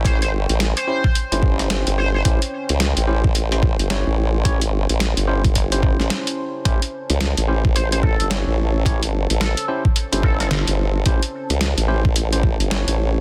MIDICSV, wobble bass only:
0, 0, Header, 1, 2, 480
1, 0, Start_track
1, 0, Tempo, 550459
1, 43, Time_signature, 4, 2, 24, 8
1, 11515, End_track
2, 0, Start_track
2, 0, Title_t, "Wobble bass"
2, 0, Program_c, 0, 39
2, 0, Note_on_c, 0, 33, 95
2, 200, Note_off_c, 0, 33, 0
2, 200, Note_on_c, 0, 32, 95
2, 407, Note_off_c, 0, 32, 0
2, 430, Note_on_c, 0, 33, 96
2, 646, Note_off_c, 0, 33, 0
2, 1149, Note_on_c, 0, 31, 107
2, 1606, Note_off_c, 0, 31, 0
2, 1628, Note_on_c, 0, 31, 96
2, 1948, Note_off_c, 0, 31, 0
2, 1963, Note_on_c, 0, 33, 95
2, 2085, Note_off_c, 0, 33, 0
2, 2351, Note_on_c, 0, 37, 91
2, 2566, Note_off_c, 0, 37, 0
2, 2589, Note_on_c, 0, 33, 105
2, 3285, Note_off_c, 0, 33, 0
2, 3309, Note_on_c, 0, 31, 99
2, 3526, Note_off_c, 0, 31, 0
2, 3548, Note_on_c, 0, 33, 92
2, 4036, Note_off_c, 0, 33, 0
2, 4036, Note_on_c, 0, 32, 92
2, 4245, Note_off_c, 0, 32, 0
2, 4268, Note_on_c, 0, 33, 93
2, 4485, Note_off_c, 0, 33, 0
2, 4508, Note_on_c, 0, 31, 103
2, 5205, Note_off_c, 0, 31, 0
2, 5231, Note_on_c, 0, 33, 95
2, 5324, Note_off_c, 0, 33, 0
2, 5804, Note_on_c, 0, 33, 91
2, 5926, Note_off_c, 0, 33, 0
2, 6189, Note_on_c, 0, 37, 95
2, 6406, Note_off_c, 0, 37, 0
2, 6432, Note_on_c, 0, 33, 105
2, 7127, Note_off_c, 0, 33, 0
2, 7150, Note_on_c, 0, 31, 96
2, 7366, Note_off_c, 0, 31, 0
2, 7387, Note_on_c, 0, 33, 100
2, 7876, Note_off_c, 0, 33, 0
2, 7876, Note_on_c, 0, 32, 100
2, 8085, Note_off_c, 0, 32, 0
2, 8112, Note_on_c, 0, 33, 95
2, 8327, Note_off_c, 0, 33, 0
2, 8831, Note_on_c, 0, 31, 103
2, 9286, Note_off_c, 0, 31, 0
2, 9310, Note_on_c, 0, 31, 96
2, 9629, Note_off_c, 0, 31, 0
2, 9643, Note_on_c, 0, 33, 96
2, 9765, Note_off_c, 0, 33, 0
2, 10027, Note_on_c, 0, 37, 99
2, 10245, Note_off_c, 0, 37, 0
2, 10267, Note_on_c, 0, 33, 101
2, 10965, Note_off_c, 0, 33, 0
2, 10985, Note_on_c, 0, 31, 99
2, 11203, Note_off_c, 0, 31, 0
2, 11226, Note_on_c, 0, 33, 93
2, 11515, Note_off_c, 0, 33, 0
2, 11515, End_track
0, 0, End_of_file